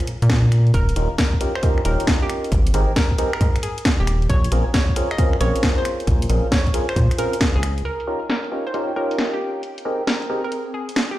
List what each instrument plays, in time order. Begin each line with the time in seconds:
0.00 finger snap, closed hi-hat
0.07 closed hi-hat
0.22 analog synth bass A#2, closed hi-hat
0.30 kick, snare, closed hi-hat
0.52 finger snap, closed hi-hat
0.67 closed hi-hat
0.74 analog synth bass D#1, synth pluck A#4, kick, closed hi-hat
0.89 closed hi-hat
0.96 analog synth bass D#1, synth stab C#4 D#4 F4 G4 A#4, closed hi-hat
1.18 synth pluck A#4, kick, snare, closed hi-hat
1.33 kick
1.41 synth stab C#4 D#4 F4 G4 A#4, closed hi-hat
1.55 synth pluck C5, finger snap
1.63 synth stab C#4 D#4 F4 G4 A#4, kick, closed hi-hat
1.78 finger snap
1.85 analog synth bass D#1, synth stab C#4 D#4 F4 G4 A#4, synth pluck A#4, closed hi-hat
2.00 closed hi-hat
2.07 kick, snare, closed hi-hat
2.22 synth pluck G4
2.30 finger snap, closed hi-hat
2.44 closed hi-hat
2.52 analog synth bass G#1, kick, closed hi-hat
2.67 closed hi-hat
2.74 analog synth bass G#1, synth stab C4 D#4 G4 G#4 A#4, closed hi-hat
2.96 synth pluck A#4, kick, snare, closed hi-hat
3.11 kick
3.18 synth stab C4 D#4 G4 G#4 A#4, closed hi-hat
3.33 synth pluck A#4, finger snap
3.41 analog synth bass G#2, kick, closed hi-hat
3.56 finger snap, closed hi-hat
3.63 synth pluck G#4, closed hi-hat
3.78 closed hi-hat
3.85 kick, snare, closed hi-hat
4.00 analog synth bass D#1, synth pluck G4
4.07 finger snap, closed hi-hat
4.22 closed hi-hat
4.29 analog synth bass A#1, synth pluck C#5, kick, closed hi-hat
4.44 closed hi-hat
4.52 analog synth bass A#1, synth stab C4 C#4 F4 G#4 A#4, closed hi-hat
4.74 synth pluck C#5, kick, snare, closed hi-hat
4.89 kick
4.96 synth stab C4 C#4 F4 G#4 A#4, closed hi-hat
5.11 synth pluck D#5, finger snap
5.18 synth stab C4 C#4 F4 G#4 A#4, kick, closed hi-hat
5.33 finger snap
5.41 analog synth bass A#1, synth stab C4 C#4 F4 G#4 A#4, synth pluck C#5, closed hi-hat
5.56 closed hi-hat
5.63 kick, snare, closed hi-hat
5.78 synth pluck C5
5.85 finger snap, closed hi-hat
6.00 closed hi-hat
6.07 analog synth bass A#1, kick, closed hi-hat
6.22 closed hi-hat
6.30 analog synth bass A#1, synth stab C4 C#4 F4 G#4 A#4, closed hi-hat
6.52 synth pluck C#5, kick, snare, closed hi-hat
6.67 kick, closed hi-hat
6.74 synth stab C4 C#4 F4 G#4 A#4, closed hi-hat
6.89 synth pluck C5, finger snap
6.96 analog synth bass A#2, kick, closed hi-hat
7.11 finger snap, closed hi-hat
7.18 synth stab C4 C#4 F4 G#4 A#4, synth pluck A#4, closed hi-hat
7.33 closed hi-hat
7.41 kick, snare, closed hi-hat
7.56 analog synth bass C#2, synth pluck G#4
7.63 finger snap, closed hi-hat
7.78 closed hi-hat
7.85 analog synth pad D#4, synth pluck A#4, closed hi-hat
7.98 analog synth pad C#5, closed hi-hat
8.07 synth stab C#4 D#4 F4 G4 A#4
8.17 analog synth pad G5
8.30 synth pluck A#4, snare, closed hi-hat
8.44 closed hi-hat
8.52 synth stab C#4 D#4 F4 G4 A#4
8.67 synth pluck C5
8.74 synth stab C#4 D#4 F4 G4 A#4, closed hi-hat
8.96 synth stab C#4 D#4 F4 G4 A#4, synth pluck A#4
9.11 closed hi-hat
9.19 snare, closed hi-hat
9.34 synth pluck G4
9.63 analog synth pad C4, closed hi-hat
9.75 analog synth pad G#4, closed hi-hat
9.85 synth stab C4 D#4 G4 G#4 A#4
10.07 synth pluck A#4, snare, closed hi-hat
10.22 closed hi-hat
10.30 synth stab C4 D#4 G4 G#4 A#4
10.44 synth pluck A#4
10.52 closed hi-hat
10.74 synth pluck G#4
10.89 closed hi-hat
10.96 snare, closed hi-hat
11.11 synth pluck G4